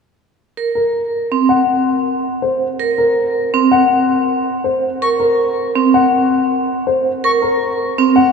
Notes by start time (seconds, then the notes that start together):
0.57 A#4
0.75 A#4
1.32 C4
1.49 F#5
2.42 C5
2.80 A#4
2.98 A#4
3.54 C4
3.72 F#5
4.64 C5
5.02 A#4 C#6
5.20 A#4
5.76 C4
5.94 F#5
6.87 C5
7.24 A#4 C#6
7.42 A#4
7.98 C4
8.16 F#5